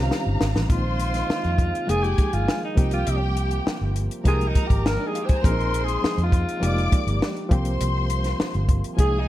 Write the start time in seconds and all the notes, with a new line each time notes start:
Already playing: C#3 D#3 G3 C4 C#4 D#4 F4 G4 C5 F5 A#5
0.11 snare
0.26 G1
0.41 G#1, snare
0.56 A1, snare
0.68 A#1 C3 D#3 G#3 A#3 C4 D#4 F4 C5 C6, kick, closed hi-hat
1.00 closed hi-hat
1.14 snare, closed hi-hat
1.30 muted fingered electric bass stroke, snare
1.44 F2, closed hi-hat
1.58 kick, closed hi-hat
1.75 closed hi-hat
1.87 F1 D#3 F3 G#3 A#3 D#4 G#4 G#5, closed hi-hat
2.04 G4, closed hi-hat
2.18 muted fingered electric bass stroke, kick, closed hi-hat
2.33 G1 F4, closed hi-hat
2.48 snare
2.64 D#4
2.76 C2 C3 F3 G3 A#3 C4 F4 G4 G5, kick, closed hi-hat
2.91 F4, closed hi-hat
3.07 C2, closed hi-hat
3.37 closed hi-hat
3.51 closed hi-hat
3.67 muted fingered electric bass stroke, snare
3.81 G1
3.96 closed hi-hat
4.11 closed hi-hat
4.24 C2 D#3 F3 G#3 A#3 D#4 G4 A#4 A#5, kick, closed hi-hat
4.28 G#4
4.41 closed hi-hat
4.48 D#4
4.55 kick, closed hi-hat
4.68 G#1 G4, kick, closed hi-hat
4.86 A#4, snare
4.99 D4 D5
5.06 D#4 G#4 D#5
5.14 F4 F5, closed hi-hat
5.22 G4 C5 G5
5.29 G#4 G#5, kick, closed hi-hat
5.36 A#4 A#5
5.42 A#1 C3 F3 A#3 C4 D4 D#4 G#4 A#4 C5 C6, kick, closed hi-hat
5.51 D#4
5.60 closed hi-hat
5.74 closed hi-hat
5.85 G#4, closed hi-hat
6.04 muted fingered electric bass stroke, snare
6.18 F2, closed hi-hat
6.24 F4
6.32 kick, closed hi-hat
6.49 closed hi-hat
6.60 F1 D#3 F3 G#3 A#3 D#4 G4 D5 D6, closed hi-hat
6.78 closed hi-hat
6.92 muted fingered electric bass stroke, kick, closed hi-hat
7.07 G1, closed hi-hat
7.22 snare
7.37 closed hi-hat
7.49 C2 C3 F3 G3 A#3 C4 F4 G4 C5 C6, kick, closed hi-hat
7.65 closed hi-hat
7.81 C2, closed hi-hat
8.10 closed hi-hat
8.24 snare, closed hi-hat
8.40 muted fingered electric bass stroke, snare
8.54 G1, closed hi-hat
8.69 kick, closed hi-hat
8.84 closed hi-hat
8.97 C2 D#3 F3 G#3 A#3 D#4 G#4 G#5, kick, closed hi-hat
9.20 D#4